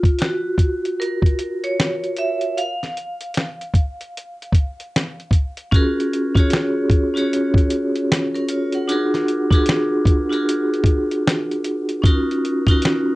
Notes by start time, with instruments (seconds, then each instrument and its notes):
Already playing: vibraphone F4
0.03 kick, closed hi-hat
0.19 vibraphone F#4, snare, closed hi-hat
0.58 kick, closed hi-hat
0.85 closed hi-hat
1.00 vibraphone A#4, closed hi-hat
1.22 kick, closed hi-hat
1.39 closed hi-hat
1.64 vibraphone C#5, closed hi-hat
1.80 snare, closed hi-hat
2.04 closed hi-hat
2.17 vibraphone E5, closed hi-hat
2.41 closed hi-hat
2.58 vibraphone F5, closed hi-hat
2.83 snare, closed hi-hat
2.97 closed hi-hat
3.21 closed hi-hat
3.34 snare, closed hi-hat
3.61 closed hi-hat
3.74 kick, closed hi-hat
4.01 closed hi-hat
4.17 closed hi-hat
4.42 closed hi-hat
4.52 kick, closed hi-hat
4.80 closed hi-hat
4.96 snare, closed hi-hat
5.20 closed hi-hat
5.31 kick, closed hi-hat
5.57 closed hi-hat
5.71 vibraphone C#4 F4 F#4 G#4, kick, closed hi-hat
5.76 vibraphone A#4
6.00 closed hi-hat
6.13 closed hi-hat
6.34 vibraphone C#4 F4 F#4 G#4, kick, closed hi-hat
6.39 vibraphone C#5
6.50 snare, closed hi-hat
6.90 kick, closed hi-hat
7.14 vibraphone C#4 F4 F#4 G#4, closed hi-hat
7.19 vibraphone C#5
7.33 closed hi-hat
7.54 kick, closed hi-hat
7.70 closed hi-hat
7.96 closed hi-hat
8.12 snare, closed hi-hat
8.34 vibraphone C#4 A#4, closed hi-hat
8.49 vibraphone F4 C#5, closed hi-hat
8.72 vibraphone A#4 F#5, closed hi-hat
8.88 vibraphone D4 F4 F#4 G#4, closed hi-hat
8.92 vibraphone A#4
9.14 snare, closed hi-hat
9.28 closed hi-hat
9.51 vibraphone D4 F4 F#4 G#4, kick, closed hi-hat
9.55 vibraphone A#4
9.66 snare, closed hi-hat
10.05 kick, closed hi-hat
10.29 vibraphone D4 F4 F#4 G#4, closed hi-hat
10.34 vibraphone A#4
10.49 closed hi-hat
10.74 closed hi-hat
10.84 kick, closed hi-hat
11.11 closed hi-hat
11.27 snare, closed hi-hat
11.51 closed hi-hat
11.64 closed hi-hat
11.89 closed hi-hat
12.02 vibraphone C#4 D#4 F4 F#4, kick, closed hi-hat
12.07 vibraphone A#4
12.31 closed hi-hat
12.45 closed hi-hat
12.67 vibraphone C#4 D#4 F4 F#4, kick, closed hi-hat
12.71 vibraphone A#4
12.82 snare, closed hi-hat